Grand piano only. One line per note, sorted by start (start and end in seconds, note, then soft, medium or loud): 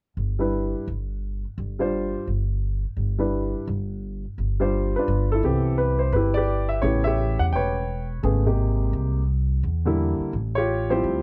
0.39 0.85 G3 soft
0.39 0.85 D4 soft
0.39 0.85 E4 soft
0.39 0.86 B4 medium
1.79 2.25 G3 medium
1.79 2.26 D4 medium
1.79 2.26 F4 medium
1.79 2.26 C5 medium
3.18 3.65 G3 soft
3.18 3.65 D4 soft
3.18 3.65 E4 soft
3.18 3.65 B4 medium
4.60 5.05 G3 medium
4.60 4.97 D4 medium
4.60 4.97 F4 soft
4.60 5.06 C5 medium
4.96 5.42 D4 medium
4.96 5.41 F4 soft
4.96 5.28 B4 medium
5.32 5.98 E4 medium
5.32 5.76 A4 medium
5.43 6.40 E3 medium
5.43 6.41 B3 soft
5.43 6.41 C4 soft
5.43 6.14 G4 medium
5.78 6.00 B4 medium
5.99 6.13 C5 medium
6.13 6.81 E4 medium
6.13 6.36 G4 soft
6.13 6.35 B4 medium
6.34 6.81 G4 medium
6.34 6.81 B4 medium
6.34 6.67 D5 medium
6.69 6.82 E5 medium
6.82 7.80 C#3 medium
6.82 7.80 A3 soft
6.82 7.80 B3 soft
6.82 7.50 E4 medium
6.82 7.06 G4 medium
6.82 7.03 C#5 medium
7.04 7.72 G4 medium
7.04 7.54 C#5 medium
7.04 7.37 E5 medium
7.40 7.45 F#5 medium
7.53 8.21 B4 medium
7.53 8.20 C#5 medium
7.53 8.06 G5 medium
8.23 8.43 C#3 medium
8.23 8.43 A3 soft
8.23 8.43 B3 medium
8.23 8.43 G#4 medium
8.46 9.20 C3 medium
8.46 9.21 G#3 soft
8.46 9.21 A#3 soft
8.46 9.21 G4 medium
9.85 10.31 D3 medium
9.85 10.31 G3 medium
9.85 10.31 A#3 medium
9.85 10.31 E4 medium
10.55 10.90 F4 medium
10.55 10.89 G4 medium
10.55 10.91 C#5 medium
10.90 11.22 F3 medium
10.90 11.22 G3 medium
10.90 11.22 C4 soft
10.90 11.22 E4 medium
10.90 11.22 F4 medium
10.90 11.22 G4 medium
10.90 11.22 C5 medium